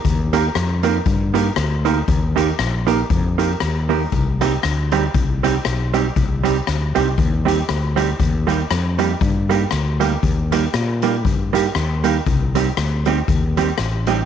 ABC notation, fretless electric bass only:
X:1
M:4/4
L:1/8
Q:"Swing" 1/4=118
K:Eb
V:1 name="Fretless electric bass" clef=bass
E,,2 F,,2 G,,2 D,,2 | E,,2 B,,,2 F,,2 E,,2 | C,,2 D,,2 C,,2 _C,,2 | C,,2 D,, C,, E,,2 D,,2 |
E,,2 F,,2 G,,2 D,,2 | E,,2 B,,2 G,,2 E,,2 | C,,2 D,,2 E,,2 =A,,,2 |]